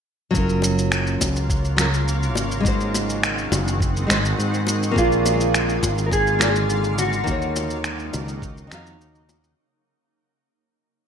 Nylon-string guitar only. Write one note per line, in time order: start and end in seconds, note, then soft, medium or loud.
0.31 1.73 F#3 medium
0.31 1.75 C#4 medium
0.36 1.76 F4 medium
0.36 1.77 A#4 loud
1.76 1.85 F#3 medium
1.76 1.86 C#4 medium
1.76 1.86 F4 medium
1.81 1.87 A#4 loud
2.60 4.04 G#3 medium
2.60 4.05 D#4 medium
2.66 4.06 F#4 medium
2.66 4.08 C5 loud
4.07 4.16 G#3 medium
4.07 4.16 D#4 medium
4.07 4.17 F#4 medium
4.11 4.18 C5 loud
4.91 6.35 A#3 medium
4.91 6.36 F4 medium
4.96 6.37 G#4 medium
4.96 6.38 D5 loud
6.39 6.47 A#3 medium
6.39 6.48 F4 medium
6.39 6.48 G#4 medium
6.39 6.49 D5 loud
7.24 8.66 D#3 medium
7.24 8.67 D#4 medium
7.28 8.68 F#4 medium
7.28 8.70 C#5 loud
8.67 9.52 D#3 medium
8.67 9.53 D#4 medium
8.72 9.55 F#4 medium
8.72 9.56 F5 loud